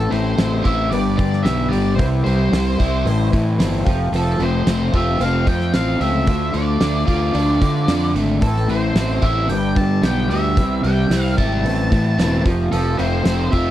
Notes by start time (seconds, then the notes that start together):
Already playing: A2 E3 C4 E4 A4
0.11 A1 A3 C4 E4 A4 C5, open hi-hat
0.38 A1 C4, snare, open hi-hat
0.64 A1 E4 E5, kick, open hi-hat
0.90 G1 G2 D3 G3 B3 D4 G4 D5, open hi-hat
1.17 G2 D3 B3 D4 G4 D5, kick, open hi-hat
1.22 G3
1.33 snare
1.43 B1 G3 B3 E5, snare, open hi-hat
1.47 D4 G4
1.69 G3 D5
1.73 G1, open hi-hat
1.95 C2 C3 E3 G3 C4 C5, kick
1.99 E4, open hi-hat
2.24 C2 G3 C4 E4 C5, open hi-hat
2.52 C2 C4, snare, open hi-hat
2.77 C2 G3 C4 E4, kick, open hi-hat
3.05 A1 A2 E3 A3 C4 E4, open hi-hat
3.30 A2 E3 A3 C4 E4, kick, open hi-hat
3.57 G1 E3 A3 C4 E4, snare, open hi-hat
3.84 F1 F2 C3 F3 A3 C4 F4, kick, open hi-hat
4.12 F1 F3, open hi-hat
4.16 A4
4.38 F1 F3 A3 C4 F4, open hi-hat
4.42 C5
4.66 F1 C4, snare, open hi-hat
4.92 F1 F3 A3 C4 F4 E5, kick, open hi-hat
5.19 F1 F2 C3 F3 A3 C4 F4 F5, open hi-hat
5.46 F2 F3 A3 C4 F4 G5, kick, open hi-hat
5.60 snare
5.73 A1 F3 A3 C4 F4 F5, snare, open hi-hat
5.99 C#2 F3 A3 C4 F4 E5, open hi-hat
6.25 D2 D3 A3 D4 F4, kick, open hi-hat
6.52 D2 A3 D4 F4 D5, open hi-hat
6.81 D2 D4, snare, open hi-hat
7.07 D2 F4 D5, kick, open hi-hat
7.33 D2 D3 A3 D4 F4, open hi-hat
7.60 D3 A3 D4 F4, kick, open hi-hat
7.88 F2 D3 A3 D4 F4, snare, open hi-hat
8.14 G#1 A3, open hi-hat
8.41 A1 A2 E3 A3 C4 E4 A4, kick, open hi-hat
8.57 snare
8.68 A1 A3 C4 E4 C5, open hi-hat
8.95 A1 C4, snare, open hi-hat
9.21 A1 E4 E5, kick, open hi-hat
9.48 G1 G2 D3 G3 B3 D4 G4 G5, open hi-hat
9.76 G2 D3 G3 B3 D4 G4 A5, kick, open hi-hat
10.02 B1 G3 B3 D4 G4 G5, snare, open hi-hat
10.29 D2 G3 B3 D4 G4 E5, open hi-hat
10.56 C2 C3 E3 G3 C4 E4, kick, open hi-hat
10.83 C2 G3 C4 E4 G5, open hi-hat
11.10 C2 C4, snare, open hi-hat
11.36 G#1 G3 C4 E4 A5, kick, open hi-hat
11.63 A1 A2 E3 A3 C4 E4, open hi-hat
11.90 A2 E3 A3 C4 E4, kick, open hi-hat
12.18 E1 E3 A3 C4 E4, snare, open hi-hat
12.45 F1 F2 C3 F3 A3 C4 F4, kick, open hi-hat
12.72 F1 F3 A4, open hi-hat
12.97 F1 F3 A3 C4 F4 C5, open hi-hat
13.25 F1 C4, snare, open hi-hat
13.51 F1 F3 A3 C4 F4 E5, kick, open hi-hat